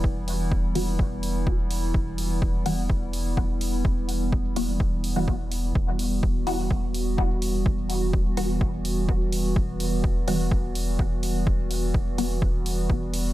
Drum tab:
HH |-o-o-o-o|-o-o-o-o|-o-o-o-o|-o-o-o-o|
BD |o-o-o-o-|o-o-o-o-|o-o-o-o-|o-o-o-o-|

HH |-o-o-o-o|-o-o-o-o|-o-o-o-o|
BD |o-o-o-o-|o-o-o-o-|o-o-o-o-|